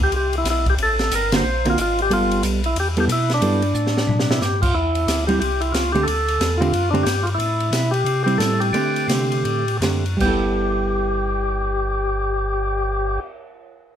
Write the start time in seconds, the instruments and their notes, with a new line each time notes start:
Already playing: tonewheel organ D2
0.03 tonewheel organ G4
0.12 tonewheel organ C2, ride
0.16 tonewheel organ G4
0.33 ride
0.38 tonewheel organ E4
0.44 tonewheel organ B1, snare, hi-hat pedal, ride
0.50 tonewheel organ E4
0.66 tonewheel organ G4, kick, ride
0.77 tonewheel organ A1, ride
0.83 tonewheel organ A4
0.99 snare, ride
1.11 tonewheel organ G1 A#4, hi-hat pedal, ride
1.32 hollow-body jazz guitar D3 A#3 C4 F#4, tonewheel organ C5, snare, ride
1.44 tonewheel organ A#1
1.65 hollow-body jazz guitar D3 A#3 C4 F#4, ride
1.70 tonewheel organ F4
1.77 tonewheel organ G#1, hi-hat pedal, ride
1.81 tonewheel organ F4
1.99 tonewheel organ G4, ride
2.10 tonewheel organ G1 F4, hollow-body jazz guitar G3 B3 A4, ride
2.31 ride
2.43 tonewheel organ B1, hi-hat pedal, ride
2.64 tonewheel organ E4, ride
2.76 tonewheel organ E2 G4, ride
2.97 hollow-body jazz guitar G3 B3 E4 A4, tonewheel organ G4, ride
3.08 tonewheel organ B2, hi-hat pedal, ride
3.12 tonewheel organ E4
3.30 snare, ride
3.34 tonewheel organ D4
3.41 tonewheel organ G2, hollow-body jazz guitar G3 B3 E4 A4, ride
3.62 ride
3.74 tonewheel organ A2, hi-hat pedal
3.87 snare
3.97 snare
4.07 tonewheel organ B2, floor tom
4.19 snare
4.30 tonewheel organ E4, snare
4.41 tonewheel organ G2 G4, snare, hi-hat pedal
4.62 tonewheel organ F4, kick, crash
4.74 tonewheel organ E2 E4
4.95 ride
5.07 tonewheel organ D2, snare, hi-hat pedal, ride
5.27 hollow-body jazz guitar G3 C4 E4, tonewheel organ G4, ride
5.40 tonewheel organ C2 G4, ride
5.61 tonewheel organ E4, ride
5.72 tonewheel organ C#2 F4, snare, hi-hat pedal, ride
5.92 hollow-body jazz guitar D3 A3 C4 G4, tonewheel organ G4, ride
6.03 tonewheel organ D2 A4
6.08 ride
6.28 ride
6.40 tonewheel organ E2, snare, hi-hat pedal, ride
6.57 hollow-body jazz guitar D3 A3 C4 G4, tonewheel organ F4
6.62 ride
6.72 tonewheel organ F#2, ride
6.91 hollow-body jazz guitar D3 A3 C4 G4, tonewheel organ D4, ride
7.03 tonewheel organ G2 G4, snare, hi-hat pedal, ride
7.23 tonewheel organ F4, ride
7.35 tonewheel organ A2 E4
7.40 ride
7.60 ride
7.71 tonewheel organ B2, snare, hi-hat pedal, ride
7.91 tonewheel organ G4, ride
8.05 tonewheel organ C3, ride
8.24 hollow-body jazz guitar G3 C4 E4, tonewheel organ G4, ride
8.38 tonewheel organ A2 A4, snare, hi-hat pedal, ride
8.60 tonewheel organ G4, ride
8.73 tonewheel organ D3, hollow-body jazz guitar D3 A3 C4 G4, ride
8.96 ride
9.08 tonewheel organ C3, hollow-body jazz guitar D3 A3 C4 G4, snare, hi-hat pedal, ride
9.32 ride
9.44 tonewheel organ A2, ride
9.68 ride
9.81 tonewheel organ F#2, hollow-body jazz guitar D3 A3 C4 G4, snare, hi-hat pedal, ride
10.06 ride
10.17 tonewheel organ G1, hollow-body jazz guitar G3, kick, crash
10.21 hollow-body jazz guitar B3, tonewheel organ G4
10.26 hollow-body jazz guitar E4 A4
10.44 cymbal swell